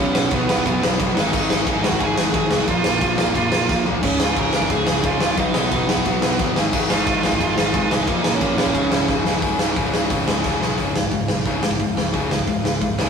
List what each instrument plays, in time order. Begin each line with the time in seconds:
Already playing: picked electric bass B1, distorted electric guitar B2 F#3 B3, lead electric guitar C#5
0.00 lead electric guitar C#4
0.14 picked electric bass B1, distorted electric guitar B2 F#3 B3, snare
0.31 picked electric bass B1, distorted electric guitar B2 F#3 B3, lead electric guitar B3 B4, kick, ride
0.47 picked electric bass B1, distorted electric guitar B2 F#3 B3, snare
0.57 kick
0.64 picked electric bass B1, distorted electric guitar B2 F#3 B3, kick, ride
0.82 picked electric bass B1, distorted electric guitar B2 F#3 B3, snare
0.98 picked electric bass B1, distorted electric guitar B2 F#3 B3, kick, ride
1.15 picked electric bass G#1, distorted electric guitar G#2 D#3 G#3, lead electric guitar D#4, snare
1.20 lead electric guitar D#5
1.32 picked electric bass G#1, distorted electric guitar G#2 D#3 G#3, lead electric guitar D#4, kick, crash
1.36 lead electric guitar D#5
1.49 picked electric bass G#1, distorted electric guitar G#2 D#3 G#3, snare
1.66 picked electric bass G#1, distorted electric guitar G#2 D#3 G#3, kick, ride
1.83 picked electric bass G#1, distorted electric guitar G#2 D#3 G#3, lead electric guitar F#4 F#5, snare
1.92 kick
1.99 picked electric bass G#1, distorted electric guitar G#2 D#3 G#3, kick, ride
2.04 lead electric guitar G#4 G#5
2.16 picked electric bass G#1, distorted electric guitar G#2 D#3 G#3, snare
2.33 picked electric bass G#1, distorted electric guitar G#2 D#3 G#3, lead electric guitar G#4, kick, ride
2.37 lead electric guitar G#5
2.50 picked electric bass C2, distorted electric guitar G#2 D#3 G#3, snare
2.66 picked electric bass A#1, distorted electric guitar A#2 F3 A#3, lead electric guitar F4, kick, ride
2.70 lead electric guitar F5
2.84 picked electric bass A#1, distorted electric guitar A#2 F3 A#3, snare
3.01 picked electric bass A#1, distorted electric guitar A#2 F3 A#3, kick, ride
3.18 picked electric bass A#1, distorted electric guitar A#2 F3 A#3, snare
3.27 kick
3.35 picked electric bass A#1, distorted electric guitar A#2 F3 A#3, lead electric guitar F4 F5, kick, ride
3.52 picked electric bass A#1, distorted electric guitar A#2 F3 A#3, snare
3.69 picked electric bass A#1, distorted electric guitar A#2 F3 A#3, kick, snare
3.85 picked electric bass A#1, distorted electric guitar A#2 F3 A#3, floor tom
4.01 picked electric bass C#1, distorted electric guitar C#2 G#2 C#3, lead electric guitar C#4 C#5, kick, crash
4.19 picked electric bass C#1, distorted electric guitar C#2 G#2 C#3, lead electric guitar F5, snare
4.23 lead electric guitar F4
4.34 picked electric bass C#1, distorted electric guitar C#2 G#2 C#3, lead electric guitar A#4, kick, ride
4.39 lead electric guitar A#5
4.52 picked electric bass C#1, distorted electric guitar C#2 G#2 C#3, snare
4.62 kick
4.69 picked electric bass C#1, distorted electric guitar C#2 G#2 C#3, lead electric guitar G#4 G#5, kick, ride
4.86 picked electric bass C#1, distorted electric guitar C#2 G#2 C#3, snare
5.02 picked electric bass C#1, distorted electric guitar C#2 G#2 C#3, lead electric guitar F4 F5, kick, ride
5.19 picked electric bass C#1, distorted electric guitar C#2 G#2 C#3, snare
5.35 picked electric bass B1, distorted electric guitar B2 F#3 B3, kick, ride
5.40 lead electric guitar D#4 D#5
5.54 picked electric bass B1, distorted electric guitar B2 F#3 B3, lead electric guitar D#5, snare
5.58 lead electric guitar D#4
5.70 picked electric bass B1, distorted electric guitar B2 F#3 B3, kick, ride
5.87 picked electric bass B1, distorted electric guitar B2 F#3 B3, snare
5.97 kick
6.05 picked electric bass B1, distorted electric guitar B2 F#3 B3, kick, ride
6.22 picked electric bass B1, distorted electric guitar B2 F#3 B3, snare
6.39 picked electric bass G1, distorted electric guitar B2 F#3 B3, kick, ride
6.56 picked electric bass G#1, distorted electric guitar G#2 D#3 G#3, snare
6.73 picked electric bass G#1, distorted electric guitar G#2 D#3 G#3, kick, crash
6.89 picked electric bass G#1, distorted electric guitar G#2 D#3 G#3, lead electric guitar F4 F5, snare
7.06 picked electric bass G#1, distorted electric guitar G#2 D#3 G#3, kick, ride
7.23 picked electric bass G#1, distorted electric guitar G#2 D#3 G#3, lead electric guitar F4 F5, snare
7.32 kick
7.39 picked electric bass G#1, distorted electric guitar G#2 D#3 G#3, kick, ride
7.55 picked electric bass G#1, distorted electric guitar G#2 D#3 G#3, lead electric guitar F4 F5, snare
7.74 picked electric bass G#1, distorted electric guitar G#2 D#3 G#3, kick, ride
7.91 picked electric bass C2, distorted electric guitar G#2 D#3 G#3, lead electric guitar D#4 D#5, snare
8.07 picked electric bass A#1, distorted electric guitar A#2 F3 A#3, kick, ride
8.24 picked electric bass A#1, distorted electric guitar A#2 F3 A#3, snare
8.34 lead electric guitar C#4 C#5
8.41 picked electric bass A#1, distorted electric guitar A#2 F3 A#3, kick, ride
8.56 picked electric bass A#1, distorted electric guitar A#2 F3 A#3, lead electric guitar C#4 C#5, snare
8.66 kick
8.73 picked electric bass C#1, distorted electric guitar C#2 G#2 C#3, kick, ride
8.91 picked electric bass C#1, distorted electric guitar C#2 G#2 C#3, snare
9.08 picked electric bass C#1, distorted electric guitar C#2 G#2 C#3, kick, snare
9.25 picked electric bass C#1, distorted electric guitar C#2 G#2 C#3, snare
9.42 picked electric bass C#1, distorted electric guitar C#2 G#2 C#3, kick, open hi-hat
9.59 distorted electric guitar C#2 G#2 C#3, snare
9.76 picked electric bass C#1, distorted electric guitar C#2 G#2 C#3, kick, open hi-hat
9.92 picked electric bass C#1, distorted electric guitar C#2 G#2 C#3, snare
10.10 picked electric bass C#1, distorted electric guitar C#2 G#2 C#3, kick, open hi-hat
10.27 picked electric bass C#2, distorted electric guitar C#2 G#2 C#3, snare
10.44 picked electric bass C#1, distorted electric guitar C#2 G#2 C#3, kick, snare
10.60 picked electric bass B1, distorted electric guitar C#2 G#2 C#3, snare
10.77 picked electric bass C#1, distorted electric guitar C#2 G#2 C#3, kick, open hi-hat
10.95 picked electric bass C#1, distorted electric guitar C#2 G#2, snare
11.03 kick
11.11 picked electric bass C#1, distorted electric guitar C#2 G#2, kick, open hi-hat
11.28 picked electric bass B1, distorted electric guitar C#2 G#2, snare
11.45 picked electric bass C#1, distorted electric guitar C#2 G#2 C#3, kick, open hi-hat
11.63 picked electric bass C#1, distorted electric guitar C#2 G#2, snare
11.71 kick
11.80 picked electric bass C#1, distorted electric guitar C#2 G#2, kick, open hi-hat
11.97 distorted electric guitar C#2 G#2, picked electric bass C#2, snare
12.12 picked electric bass C#1, distorted electric guitar C#2 G#2 C#3, kick, open hi-hat
12.30 picked electric bass C#1, distorted electric guitar C#2 G#2, snare
12.39 kick
12.46 picked electric bass C#1, distorted electric guitar C#2 G#2, kick, open hi-hat
12.63 picked electric bass C#1, distorted electric guitar C#2 G#2, snare
12.80 picked electric bass C#1, distorted electric guitar C#2 G#2, kick, open hi-hat
12.99 picked electric bass C#1, distorted electric guitar C#2 G#2 C#3, snare